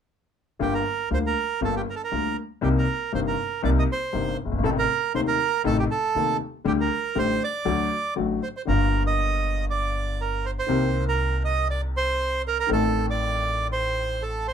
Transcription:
0.59 0.81 G1 medium
0.59 0.82 G1 medium
0.59 0.81 G2 medium
0.59 0.81 D3 soft
0.59 0.81 G3 soft
0.59 0.81 A#3 soft
0.59 0.81 F4 medium
0.59 0.74 G4 medium
0.74 1.09 A#4 medium
1.10 1.32 D2 soft
1.10 1.32 D3 soft
1.10 1.32 G3 soft
1.10 1.32 A#3 soft
1.10 1.32 F4 soft
1.10 1.19 C5 medium
1.27 1.61 A#4 medium
1.61 1.83 G1 medium
1.61 1.83 G2 medium
1.61 1.83 D3 soft
1.61 1.83 G3 soft
1.61 1.83 A#3 soft
1.61 1.83 F4 medium
1.61 1.75 A4 medium
1.77 1.82 G4 medium
1.90 1.95 A#4 medium
1.96 2.02 A4 soft
2.04 2.37 A#4 medium
2.12 2.33 D2 soft
2.12 2.34 D2 soft
2.12 2.33 D3 soft
2.12 2.33 G3 soft
2.12 2.33 A#3 soft
2.12 2.33 F4 soft
2.61 2.83 C2 medium
2.61 2.84 C2 medium
2.61 2.84 C3 medium
2.61 2.83 G3 soft
2.61 2.84 A#3 soft
2.61 2.83 D#4 medium
2.61 2.69 G4 medium
2.78 3.12 A#4 medium
3.12 3.34 G1 soft
3.12 3.35 G1 soft
3.12 3.34 G2 soft
3.12 3.34 C3 soft
3.12 3.34 G3 soft
3.12 3.34 A#3 soft
3.12 3.34 D#4 soft
3.12 3.20 C5 medium
3.27 3.62 A#4 medium
3.62 3.84 C2 medium
3.62 3.85 C2 medium
3.62 3.84 C3 medium
3.62 3.84 G3 soft
3.62 3.84 A#3 soft
3.62 3.84 D#4 medium
3.62 3.70 D5 medium
3.79 3.84 D#5 medium
3.92 4.37 C5 medium
4.13 4.34 G1 soft
4.13 4.35 G1 soft
4.13 4.34 G2 soft
4.13 4.34 C3 soft
4.13 4.34 G3 soft
4.13 4.35 A#3 soft
4.13 4.35 D#4 soft
4.45 4.51 F#1 soft
4.51 4.58 G1 soft
4.51 4.58 G1 medium
4.58 4.64 G#1 soft
4.58 4.64 G#1 medium
4.63 4.85 A1 medium
4.63 4.85 A2 medium
4.63 4.85 C3 medium
4.63 4.85 D#3 medium
4.63 4.85 A3 soft
4.63 4.85 D#4 medium
4.63 4.70 A4 medium
4.79 5.13 A#4 medium
5.14 5.36 D#1 soft
5.14 5.36 D#2 soft
5.14 5.35 C3 soft
5.14 5.35 D#3 soft
5.14 5.36 A3 soft
5.14 5.36 D#4 soft
5.14 5.21 C5 medium
5.27 5.62 A#4 medium
5.64 5.86 A1 medium
5.64 5.85 A2 medium
5.64 5.85 C3 soft
5.64 5.86 D#3 soft
5.64 5.86 A3 medium
5.64 5.86 D#4 medium
5.64 5.77 A4 medium
5.79 5.84 G4 medium
5.91 6.37 A4 medium
6.15 6.36 D#1 soft
6.15 6.36 D#2 soft
6.15 6.36 C3 soft
6.15 6.36 D#3 soft
6.15 6.36 A3 soft
6.15 6.37 D#4 soft
6.64 6.86 D2 medium
6.64 6.86 D3 medium
6.64 6.86 G3 medium
6.64 6.86 A3 soft
6.64 6.87 G4 medium
6.64 6.73 G4 medium
6.81 7.18 A#4 medium
7.15 7.37 A1 soft
7.15 7.37 A2 soft
7.15 7.37 D3 soft
7.15 7.37 G3 soft
7.15 7.37 A3 soft
7.15 7.37 G4 soft
7.15 7.43 C5 medium
7.44 8.14 D5 medium
7.65 7.87 D2 medium
7.65 7.87 D3 medium
7.65 7.87 F#3 soft
7.65 7.87 A3 soft
7.65 7.87 F#4 medium
8.16 8.38 A1 soft
8.16 8.38 A1 medium
8.16 8.38 A2 soft
8.16 8.38 D3 soft
8.16 8.38 F#3 soft
8.16 8.38 A3 soft
8.16 8.38 F#4 soft
8.43 8.48 C5 medium
8.57 8.62 C5 medium
8.65 10.59 G1 medium
8.65 10.59 G2 medium
8.65 10.58 D3 soft
8.65 10.59 G3 soft
8.65 10.59 A#3 soft
8.65 9.03 A#4 medium
8.70 10.60 F4 soft
9.07 9.65 D#5 medium
9.70 10.21 D5 medium
10.21 10.46 A#4 medium
10.46 10.51 C5 medium
10.59 11.05 C5 medium
10.67 12.59 C2 medium
10.67 12.60 C2 medium
10.67 12.59 C3 soft
10.67 12.58 D#3 soft
10.67 12.59 A#3 soft
10.67 12.60 C4 soft
10.67 12.60 G4 medium
11.08 11.43 A#4 medium
11.45 11.68 D#5 medium
11.70 11.81 D5 medium
11.97 12.42 C5 medium
12.48 12.58 A#4 medium
12.60 12.70 A#4 medium
12.67 14.53 A1 medium
12.67 14.53 A2 medium
12.67 14.53 D#3 medium
12.67 14.53 A3 soft
12.67 14.53 C4 soft
12.71 14.53 A4 medium
12.71 13.06 A4 medium
13.10 13.67 D5 medium
13.72 14.23 C5 medium
14.22 14.47 A4 medium
14.48 14.53 C5 medium

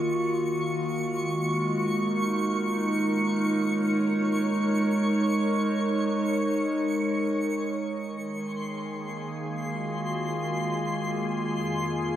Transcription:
0.00 1.11 D#3 medium
0.00 3.16 A#3 medium
0.00 3.71 F4 medium
0.00 2.32 F#4 medium
0.00 8.09 C#6 medium
1.10 8.06 G#3 medium
1.70 9.46 D#4 medium
1.70 9.46 A#4 medium
3.41 9.46 C#5 medium
8.07 11.55 D#3 medium
8.07 12.16 G#3 medium
8.07 12.16 G#4 medium
8.07 12.16 C6 medium
8.87 12.16 A#3 medium
9.62 12.16 F4 medium
9.62 11.54 F#4 medium
11.54 12.16 F2 medium
12.13 12.16 C#3 medium

